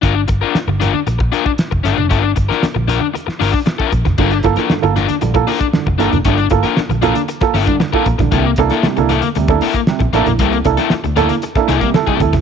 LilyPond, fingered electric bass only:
\new Staff \with { instrumentName = "Fingered electric bass" } { \clef bass \time 4/4 \key g \dorian \tempo 4 = 116 g,,8 g,,16 r8 g,,8 r16 bes,,8 r8. f,,16 g,,16 f,,16 | g,,8 g,,16 r8 bes,,8 r8. g,,16 r8. bes,,16 f,,16 | g,,8 g,,16 r8 g,,8 r16 bes,,8 r8. f,,16 g,,16 f,,16 | g,,8 g,,16 r8 bes,,8 r8. g,,16 r8. bes,,16 bes,,16 |
c,8 c,16 r8 c,8 r16 d,8 r8. bes,,16 a,,16 bes,,16 | c,8 c,16 r8 d,8 r8. c,16 r8. d,16 f,,16 | }